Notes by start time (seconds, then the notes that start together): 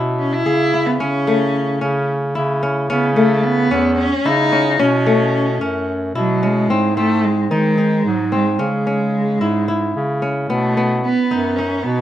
Already playing: B2 B3 C#4 E4
0.19 C#4
0.33 E4
0.46 C#3 G#4
0.74 E4
0.86 B3
1.00 C#3 C#4
1.27 A3
1.81 C#3 C#4
2.35 C#3 E4
2.63 C#4
2.90 C#3 B3 C#4
3.16 A3
3.44 B3
3.71 E2 C#4
3.98 C#4
4.25 C#3 D#4 E4
4.52 C#4
4.79 B2 C#4
5.06 A3
5.61 F#2 C#4
6.15 B2 F#3 E4
6.43 G#3 C#4
6.69 G#2 C4
6.97 A3 C4
7.25 G#3
7.50 D#3 G#3 D#4
7.78 D#4
8.05 G#2 F#3
8.32 G#3 C4
8.59 C#3 G#3 C#4
8.87 C#4
9.41 G#2 E4
9.68 E4
9.96 C#3
10.22 C#4
10.49 B2 A3 B3
10.77 B3
11.03 B3
11.31 F#2 D#4
11.56 C#4 D#4
11.83 B2 B3